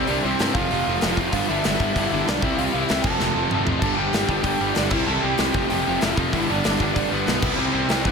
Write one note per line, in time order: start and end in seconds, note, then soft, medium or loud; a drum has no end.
0.00 0.36 C3 loud
0.00 0.38 G3 medium
0.00 0.40 C4 loud
0.07 0.18 C2 loud
0.07 0.22 C3 medium
0.07 0.22 G3 loud
0.07 0.22 C4 medium
0.07 0.23 D4 medium
0.07 0.23 E4 loud
0.07 0.24 G4 loud
0.07 0.22 D5 medium
0.07 open hi-hat medium
0.23 0.34 C2 medium
0.23 0.40 C3 medium
0.23 0.39 G3 loud
0.23 0.39 C4 loud
0.23 0.54 C4 medium
0.23 0.39 E4 loud
0.23 0.38 G4 loud
0.23 0.52 C5 medium
0.39 0.49 G2 loud
0.39 0.54 C3 medium
0.39 0.55 G3 medium
0.39 0.55 C4 medium
0.39 0.54 E4 medium
0.39 0.54 G4 loud
0.39 snare loud
0.39 open hi-hat medium
0.54 0.64 F1 loud
0.54 0.71 F2 loud
0.54 0.72 C3 loud
0.54 0.71 F3 loud
0.54 0.71 A3 loud
0.54 0.71 C4 loud
0.54 1.14 F4 medium
0.54 0.70 F4 loud
0.54 1.13 F5 loud
0.54 kick loud
0.71 0.80 F1 medium
0.71 0.86 F2 medium
0.71 0.86 C3 medium
0.71 0.87 F3 medium
0.71 0.87 A3 loud
0.71 0.87 C4 loud
0.71 0.87 F4 medium
0.71 open hi-hat medium
0.87 0.96 F1 loud
0.87 1.03 F2 loud
0.87 1.02 C3 loud
0.87 1.02 F3 loud
0.87 1.02 A3 loud
0.87 1.01 C4 loud
0.87 1.01 F4 loud
1.01 1.12 F1 loud
1.01 1.16 F2 medium
1.01 1.16 C3 medium
1.01 1.16 F3 medium
1.01 1.17 A3 medium
1.01 1.17 C4 loud
1.01 1.17 F4 loud
1.01 snare loud
1.01 open hi-hat medium
1.17 1.27 F1 medium
1.17 1.32 F2 medium
1.17 1.32 C3 medium
1.17 1.32 F3 loud
1.17 1.32 A3 medium
1.17 1.33 C4 loud
1.17 1.33 F4 loud
1.17 kick loud
1.32 1.42 G1 loud
1.32 1.49 G2 loud
1.32 1.49 D3 loud
1.32 1.48 G3 medium
1.32 1.48 B3 loud
1.32 1.47 D4 loud
1.32 1.48 F4 medium
1.32 1.48 F5 loud
1.32 kick medium
1.32 open hi-hat medium
1.49 1.58 G1 loud
1.49 1.64 G2 loud
1.49 1.64 D3 medium
1.49 1.65 G3 loud
1.49 1.65 B3 loud
1.49 1.66 D4 loud
1.49 1.93 E4 medium
1.49 1.92 E5 medium
1.64 1.75 G1 loud
1.64 1.81 G2 medium
1.64 1.80 D3 medium
1.64 1.80 G3 medium
1.64 1.79 B3 loud
1.64 1.80 D4 loud
1.64 snare loud
1.64 open hi-hat medium
1.80 1.89 G1 loud
1.80 1.96 G2 medium
1.80 1.95 D3 medium
1.80 1.96 G3 medium
1.80 1.96 B3 loud
1.80 1.97 D4 loud
1.80 kick medium
1.94 2.05 G1 medium
1.94 2.12 G2 loud
1.94 2.12 D3 loud
1.94 2.12 G3 medium
1.94 2.12 B3 loud
1.94 2.25 E4 medium
1.94 2.23 E5 medium
1.94 kick loud
1.94 open hi-hat medium
1.98 2.11 D4 loud
2.12 2.22 G1 loud
2.12 2.26 G2 medium
2.12 2.27 D3 loud
2.12 2.27 G3 loud
2.12 2.27 B3 loud
2.12 2.28 D4 loud
2.27 2.37 B1 loud
2.27 2.42 G2 loud
2.27 2.42 D3 medium
2.27 2.42 G3 medium
2.27 2.42 B3 medium
2.27 2.43 D4 loud
2.27 2.43 D4 medium
2.27 2.42 D5 loud
2.27 snare loud
2.27 open hi-hat medium
2.41 2.52 C2 medium
2.41 2.58 C3 loud
2.41 2.57 G3 loud
2.41 2.57 C4 loud
2.41 2.56 E4 loud
2.41 2.58 E4 medium
2.41 2.56 E5 loud
2.41 kick loud
2.57 2.67 C2 loud
2.57 2.72 C3 medium
2.57 2.72 G3 medium
2.57 2.73 C4 medium
2.57 2.73 E4 loud
2.57 2.65 F4 medium
2.57 2.62 F5 loud
2.57 open hi-hat medium
2.73 2.83 C2 medium
2.73 2.90 C3 medium
2.73 2.89 G3 loud
2.73 2.89 C4 loud
2.73 2.88 E4 loud
2.73 3.02 E4 medium
2.73 3.05 E5 medium
2.89 2.99 C2 loud
2.89 3.03 C3 medium
2.89 3.04 G3 medium
2.89 3.03 C4 loud
2.89 3.04 E4 loud
2.89 snare loud
2.89 open hi-hat medium
3.02 3.14 F1 loud
3.02 3.18 F2 loud
3.02 3.18 C3 medium
3.02 3.18 F3 loud
3.02 3.18 A3 loud
3.02 3.17 C4 loud
3.02 3.64 A4 medium
3.02 3.62 A5 loud
3.02 kick loud
3.02 crash loud
3.19 3.30 F1 loud
3.19 3.32 F2 medium
3.19 3.33 C3 medium
3.19 3.33 F3 medium
3.19 3.34 A3 medium
3.19 3.34 C4 loud
3.19 snare medium
3.34 3.45 F1 loud
3.34 3.49 F2 loud
3.34 3.49 C3 loud
3.34 3.48 F3 loud
3.34 3.48 A3 loud
3.34 3.47 C4 loud
3.49 3.60 F1 medium
3.49 3.63 F2 medium
3.49 3.63 C3 medium
3.49 3.63 F3 medium
3.49 3.64 A3 loud
3.49 3.64 C4 loud
3.49 mid tom loud
3.55 3.84 F3 medium
3.64 3.75 A1 medium
3.64 3.81 F2 medium
3.64 3.80 C3 medium
3.64 3.81 F3 loud
3.64 3.81 A3 loud
3.64 3.81 C4 loud
3.64 floor tom loud
3.69 3.83 F3 loud
3.80 3.92 G1 medium
3.80 3.98 G2 medium
3.80 3.97 D3 medium
3.80 3.97 G3 loud
3.80 3.97 B3 loud
3.80 3.96 D4 loud
3.80 3.98 A5 loud
3.80 kick loud
3.80 crash loud
3.84 4.28 G3 loud
3.84 3.97 A4 medium
3.96 4.08 G1 medium
3.96 4.12 G2 medium
3.96 4.11 D3 medium
3.96 4.12 G3 medium
3.96 4.12 B3 loud
3.96 4.13 D4 loud
3.96 4.42 G4 medium
3.96 4.41 G5 loud
4.13 4.23 G1 loud
4.13 4.28 G2 medium
4.13 4.28 D3 medium
4.13 4.27 G3 loud
4.13 4.27 B3 loud
4.13 4.26 D4 loud
4.13 snare loud
4.13 open hi-hat medium
4.28 4.39 G1 loud
4.28 4.42 G2 loud
4.28 4.43 D3 medium
4.28 4.43 G3 medium
4.28 4.43 B3 loud
4.28 4.43 D4 loud
4.28 kick medium
4.33 4.75 G2 medium
4.42 4.54 G1 medium
4.42 4.60 G2 loud
4.42 4.59 D3 medium
4.42 4.59 G3 medium
4.42 4.59 B3 loud
4.42 4.59 D4 loud
4.42 4.76 G5 medium
4.42 kick loud
4.42 open hi-hat medium
4.46 4.75 G4 medium
4.60 4.70 G1 medium
4.60 4.76 G2 medium
4.60 4.75 D3 medium
4.60 4.76 G3 loud
4.60 4.77 B3 loud
4.60 4.77 D4 loud
4.74 4.87 G1 loud
4.74 4.92 G2 medium
4.74 4.91 D3 medium
4.74 4.91 G3 medium
4.74 4.91 D4 medium
4.74 4.89 D5 medium
4.74 snare loud
4.74 open hi-hat medium
4.78 4.91 B3 loud
4.78 4.92 D4 loud
4.89 5.01 C2 medium
4.89 5.07 C3 loud
4.89 5.08 G3 loud
4.89 5.07 C4 loud
4.89 5.07 E4 medium
4.89 5.07 E5 loud
4.89 kick loud
4.89 crash loud
4.93 5.07 E4 loud
5.06 5.17 C2 loud
5.06 5.22 C3 medium
5.06 5.22 G3 medium
5.06 5.23 C4 medium
5.06 5.24 E4 loud
5.06 5.23 A4 medium
5.06 5.22 A5 loud
5.22 5.33 C2 medium
5.22 5.40 C3 medium
5.22 5.39 G3 loud
5.22 5.38 C4 loud
5.22 5.38 E4 loud
5.22 5.68 G4 medium
5.22 5.68 G5 loud
5.38 5.48 C2 medium
5.38 5.55 C3 medium
5.38 5.55 G3 medium
5.38 5.54 C4 medium
5.38 5.54 E4 loud
5.38 snare loud
5.38 open hi-hat medium
5.44 5.57 C4 medium
5.54 5.64 F1 loud
5.54 5.72 F2 medium
5.54 5.72 C3 medium
5.54 5.72 F3 loud
5.54 5.71 A3 loud
5.54 5.70 C4 loud
5.54 kick loud
5.70 5.81 F1 medium
5.70 5.87 F2 medium
5.70 5.86 C3 medium
5.70 5.87 F3 medium
5.70 5.87 A3 loud
5.70 5.88 C4 medium
5.70 6.01 G4 medium
5.70 6.03 G5 medium
5.70 open hi-hat medium
5.87 5.97 F1 loud
5.87 6.02 F2 loud
5.87 6.02 C3 loud
5.87 6.01 F3 loud
5.87 6.01 A3 loud
5.87 6.01 C4 loud
5.99 6.12 F1 loud
5.99 6.17 F3 loud
5.99 6.18 A3 loud
5.99 6.18 C4 loud
5.99 6.16 E4 medium
5.99 6.17 E5 medium
5.99 snare loud
5.99 open hi-hat medium
6.04 6.17 F2 medium
6.04 6.17 C3 medium
6.17 6.27 F1 medium
6.17 6.32 F2 medium
6.17 6.33 C3 medium
6.17 6.33 F3 loud
6.17 6.33 A3 loud
6.17 6.33 C4 loud
6.17 6.33 F4 medium
6.17 6.32 F5 loud
6.17 kick loud
6.32 6.43 G1 loud
6.32 6.50 G2 loud
6.32 6.49 D3 medium
6.32 6.49 G3 loud
6.32 6.48 B3 loud
6.32 6.48 D4 loud
6.32 6.49 E4 medium
6.32 6.48 E5 loud
6.32 kick medium
6.32 open hi-hat medium
6.48 6.59 G1 medium
6.48 6.63 G2 medium
6.48 6.63 D3 loud
6.48 6.64 G3 medium
6.48 6.64 B3 loud
6.48 6.64 D4 medium
6.48 6.94 D4 medium
6.48 6.92 D5 medium
6.64 6.75 G1 loud
6.64 6.80 G2 medium
6.64 6.80 D3 loud
6.64 6.81 G3 medium
6.64 6.79 B3 loud
6.64 6.79 D4 medium
6.64 snare loud
6.64 open hi-hat medium
6.80 6.89 G1 loud
6.80 6.95 G2 loud
6.80 6.95 D3 medium
6.80 6.96 G3 loud
6.80 6.96 B3 loud
6.80 6.97 D4 loud
6.80 kick medium
6.94 7.06 G1 loud
6.94 7.11 G2 medium
6.94 7.11 D3 loud
6.94 7.11 G3 medium
6.94 7.10 B3 loud
6.94 7.11 D4 medium
6.94 7.11 D5 medium
6.94 kick loud
6.94 open hi-hat medium
6.98 7.10 D4 loud
7.09 7.21 G1 medium
7.09 7.25 G2 loud
7.09 7.25 D3 loud
7.09 7.26 G3 loud
7.09 7.26 B3 loud
7.09 7.56 B3 medium
7.09 7.26 D4 loud
7.09 7.54 B4 loud
7.26 7.37 B1 loud
7.26 7.42 G2 loud
7.26 7.42 D3 loud
7.26 7.42 G3 loud
7.26 7.42 B3 loud
7.26 7.42 D4 loud
7.26 snare loud
7.26 open hi-hat medium
7.31 7.42 G3 medium
7.42 7.52 C2 loud
7.42 7.59 C3 medium
7.42 7.58 G3 loud
7.42 7.58 C4 loud
7.42 7.58 E4 loud
7.42 kick loud
7.42 crash loud
7.57 7.67 C2 medium
7.57 7.72 C3 medium
7.57 7.73 G3 medium
7.57 7.73 C4 medium
7.57 7.73 C4 loud
7.57 7.73 E4 loud
7.57 7.72 C5 medium
7.73 7.84 C2 medium
7.73 7.89 C3 medium
7.73 7.89 G3 loud
7.73 7.88 C4 loud
7.73 8.04 C4 medium
7.73 7.88 E4 loud
7.73 8.06 C5 medium
7.88 8.07 C2 loud
7.88 8.04 C3 medium
7.88 8.03 G3 medium
7.88 8.05 C4 loud
7.88 8.05 E4 medium
7.88 snare loud
7.88 open hi-hat medium
8.04 8.12 G1 loud
8.04 8.12 G2 loud
8.04 8.12 D3 loud
8.04 8.12 G3 loud
8.04 8.12 B3 loud
8.04 8.12 B3 medium
8.04 8.12 D4 loud
8.04 8.12 B4 medium
8.04 kick loud